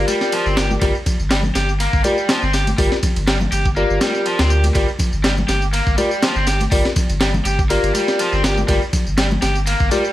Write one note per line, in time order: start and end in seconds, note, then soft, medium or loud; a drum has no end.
0.00 0.79 F4 medium
0.00 0.79 G4 medium
0.00 0.79 A#4 medium
0.00 0.79 D5 medium
0.08 0.31 G3 medium
0.08 ride medium
0.08 tambourine medium
0.08 high conga medium
0.21 snare soft
0.21 tambourine soft
0.32 0.45 F3 medium
0.32 ride medium
0.32 tambourine soft
0.46 0.77 G1 loud
0.46 0.55 C4 medium
0.46 tambourine soft
0.57 0.70 G4 medium
0.57 snare loud
0.57 ride medium
0.57 tambourine medium
0.71 tambourine soft
0.71 high conga medium
0.81 0.91 G1 loud
0.81 0.92 G3 medium
0.81 0.93 F4 medium
0.81 0.93 G4 medium
0.81 0.93 A#4 medium
0.81 0.93 D5 medium
0.81 kick loud
0.81 ride medium
0.81 tambourine soft
0.95 tambourine soft
1.06 kick loud
1.06 ride medium
1.06 tambourine medium
1.06 low conga medium
1.19 1.51 G1 medium
1.19 tambourine soft
1.30 1.37 G3 loud
1.30 snare loud
1.30 ride medium
1.30 tambourine soft
1.43 tambourine soft
1.43 high conga medium
1.43 low conga medium
1.55 1.88 G1 medium
1.55 1.68 G4 medium
1.55 snare medium
1.55 ride medium
1.55 tambourine medium
1.69 tambourine soft
1.80 2.03 A#3 medium
1.80 ride medium
1.80 tambourine soft
1.93 2.02 G1 medium
1.93 kick loud
1.93 tambourine soft
2.04 2.28 G3 medium
2.04 2.16 F4 medium
2.04 2.16 G4 medium
2.04 2.16 A#4 medium
2.04 2.16 D5 loud
2.04 ride medium
2.04 tambourine medium
2.04 high conga medium
2.18 tambourine soft
2.29 2.41 F3 medium
2.29 snare loud
2.29 ride medium
2.29 tambourine soft
2.42 2.74 G1 loud
2.42 2.51 C4 medium
2.42 tambourine soft
2.53 2.66 G4 medium
2.53 snare soft
2.53 ride medium
2.53 tambourine medium
2.67 ride soft
2.67 tambourine soft
2.67 high conga medium
2.78 2.88 G1 loud
2.78 2.89 G3 medium
2.78 2.96 F4 medium
2.78 2.96 G4 medium
2.78 2.96 A#4 medium
2.78 2.96 D5 medium
2.78 kick loud
2.78 open hi-hat medium
2.78 tambourine soft
2.92 snare soft
2.92 tambourine soft
3.03 kick medium
3.03 ride medium
3.03 tambourine medium
3.03 low conga medium
3.16 3.47 G1 medium
3.16 ride soft
3.16 tambourine soft
3.27 3.34 G3 medium
3.27 snare loud
3.27 ride medium
3.27 tambourine soft
3.40 tambourine soft
3.40 high conga medium
3.40 low conga medium
3.52 3.84 G1 medium
3.52 3.65 G4 medium
3.52 ride medium
3.52 tambourine medium
3.65 kick medium
3.65 tambourine soft
3.76 4.00 A#3 medium
3.76 4.72 F4 medium
3.76 4.72 G4 medium
3.76 4.72 A#4 medium
3.76 4.72 D5 medium
3.76 tambourine soft
3.90 3.98 G1 medium
3.90 tambourine soft
4.01 4.25 G3 medium
4.01 snare loud
4.01 ride medium
4.01 tambourine medium
4.01 high conga medium
4.15 tambourine soft
4.26 4.38 F3 medium
4.26 ride medium
4.26 tambourine soft
4.39 4.70 D2 medium
4.39 4.48 C4 medium
4.39 snare loud
4.39 ride medium
4.39 tambourine soft
4.50 4.63 G4 medium
4.50 tambourine medium
4.63 ride medium
4.63 tambourine soft
4.63 high conga medium
4.75 4.85 G1 loud
4.75 4.86 G3 medium
4.75 4.87 F4 medium
4.75 4.87 G4 medium
4.75 4.87 A#4 medium
4.75 4.87 D5 medium
4.75 kick loud
4.75 ride medium
4.75 tambourine soft
4.88 tambourine soft
4.99 kick medium
4.99 ride medium
4.99 tambourine medium
4.99 low conga medium
5.13 5.44 G1 medium
5.13 tambourine soft
5.24 5.30 G3 medium
5.24 snare loud
5.24 ride medium
5.24 tambourine soft
5.37 tambourine soft
5.37 high conga medium
5.37 low conga medium
5.48 5.81 G1 medium
5.48 5.61 G4 medium
5.48 snare medium
5.48 ride medium
5.48 tambourine medium
5.62 tambourine soft
5.73 5.97 A#3 medium
5.73 ride medium
5.73 tambourine soft
5.87 5.95 G1 medium
5.87 kick loud
5.87 tambourine soft
5.97 6.21 G3 medium
5.97 6.10 F4 medium
5.97 6.10 G4 medium
5.97 6.10 A#4 medium
5.97 6.10 D5 loud
5.97 ride medium
5.97 tambourine medium
5.97 high conga medium
6.11 tambourine soft
6.22 6.35 F3 medium
6.22 snare loud
6.22 ride medium
6.22 tambourine soft
6.36 6.67 G1 loud
6.36 6.45 C4 medium
6.36 tambourine soft
6.47 6.60 G4 medium
6.47 snare medium
6.47 ride medium
6.47 tambourine medium
6.60 ride soft
6.60 tambourine soft
6.60 high conga medium
6.71 6.82 G1 loud
6.71 6.82 G3 medium
6.71 6.90 F4 medium
6.71 6.90 G4 medium
6.71 6.90 A#4 medium
6.71 6.90 D5 medium
6.71 kick loud
6.71 open hi-hat medium
6.71 tambourine soft
6.85 snare soft
6.85 tambourine soft
6.96 kick medium
6.96 ride medium
6.96 tambourine medium
6.96 low conga medium
7.09 7.41 G1 loud
7.09 ride soft
7.09 tambourine soft
7.21 7.27 G3 loud
7.21 snare loud
7.21 ride medium
7.21 tambourine soft
7.34 tambourine soft
7.34 high conga loud
7.34 low conga medium
7.45 7.78 G1 medium
7.45 7.58 G4 medium
7.45 ride medium
7.45 tambourine medium
7.59 kick medium
7.59 tambourine soft
7.70 7.93 A#3 medium
7.70 8.66 F4 medium
7.70 8.66 G4 medium
7.70 8.66 A#4 medium
7.70 8.66 D5 medium
7.70 ride medium
7.70 tambourine soft
7.83 7.92 G1 medium
7.83 ride soft
7.83 tambourine soft
7.94 8.18 G3 medium
7.94 ride medium
7.94 tambourine medium
7.94 high conga medium
8.08 snare soft
8.08 tambourine soft
8.19 8.31 F3 medium
8.19 ride medium
8.19 tambourine soft
8.32 8.64 G1 loud
8.32 8.41 C4 medium
8.32 tambourine soft
8.44 8.57 G4 medium
8.44 snare loud
8.44 ride medium
8.44 tambourine medium
8.57 tambourine soft
8.57 high conga medium
8.68 8.78 G1 loud
8.68 8.79 G3 medium
8.68 8.80 F4 medium
8.68 8.80 G4 medium
8.68 8.80 A#4 medium
8.68 8.80 D5 medium
8.68 kick loud
8.68 ride medium
8.68 tambourine soft
8.82 tambourine soft
8.93 kick medium
8.93 ride medium
8.93 tambourine medium
8.93 low conga medium
9.07 9.38 G1 medium
9.07 tambourine soft
9.17 9.24 G3 loud
9.17 snare loud
9.17 ride medium
9.17 tambourine soft
9.31 tambourine soft
9.31 high conga loud
9.31 low conga loud
9.42 9.75 G1 medium
9.42 9.55 G4 medium
9.42 snare medium
9.42 ride medium
9.42 tambourine medium
9.55 tambourine soft
9.66 9.91 A#3 medium
9.66 ride medium
9.66 tambourine soft
9.80 9.89 G1 medium
9.80 kick medium
9.80 tambourine soft
9.91 10.13 G3 medium
9.91 10.03 F4 medium
9.91 10.03 G4 medium
9.91 10.03 A#4 medium
9.91 10.03 D5 loud
9.91 ride medium
9.91 tambourine medium
9.91 high conga medium
10.04 tambourine soft